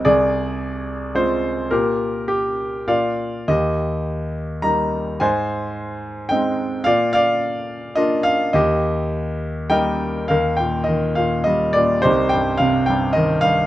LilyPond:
<<
  \new Staff \with { instrumentName = "Grand piano" } { \time 3/4 \key ees \major \tempo 4 = 106 << { d''2 c''4 | bes'4 g'4 f''4 | ees''2 bes''4 | aes''2 g''4 |
f''8 f''4. ees''8 f''8 | ees''2 g''4 | f''8 g''8 ees''8 f''8 ees''8 d''8 | c''8 g''8 f''8 g''8 ees''8 f''8 | } \\ { aes'2 r4 | g'4. r8 d''4 | g'2 r4 | c''2 r4 |
d''8 d''4. r4 | g'2 <bes' ees''>4 | bes'4. r4. | <ees' g'>4. r4. | } >> }
  \new Staff \with { instrumentName = "Grand piano" } { \clef bass \time 3/4 \key ees \major c,2 <aes c' f'>4 | bes,2 bes,4 | ees,2 <g bes ees'>4 | aes,2 <aes c' ees'>4 |
bes,2 <bes d' f'>4 | ees,2 <g bes ees'>4 | ees,8 bes,8 ees8 bes,8 g8 bes,8 | c,8 g,8 c8 g,8 ees8 g,8 | }
>>